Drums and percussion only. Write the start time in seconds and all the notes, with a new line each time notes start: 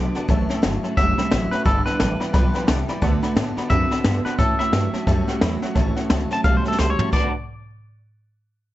0.15 snare
0.29 kick, snare
0.50 snare
0.63 snare, hi-hat pedal
0.84 snare
0.97 kick, snare
1.18 snare
1.31 snare, hi-hat pedal
1.52 snare
1.66 kick, snare
1.86 snare
2.00 snare, hi-hat pedal
2.21 snare
2.34 kick, snare
2.55 snare
2.68 snare, hi-hat pedal
2.88 snare
3.02 kick, snare
3.23 snare
3.37 snare, hi-hat pedal
3.57 snare
3.70 kick, snare
3.91 snare
4.04 snare, hi-hat pedal
4.26 snare
4.39 kick, snare
4.60 snare
4.73 snare, hi-hat pedal
4.94 snare
5.07 kick, snare
5.28 snare
5.41 snare, hi-hat pedal
5.62 snare
5.76 kick, snare
5.96 snare
6.10 snare, hi-hat pedal
6.31 snare
6.44 kick, snare
6.65 snare
6.72 snare
6.79 snare, hi-hat pedal
6.99 floor tom
7.13 kick, crash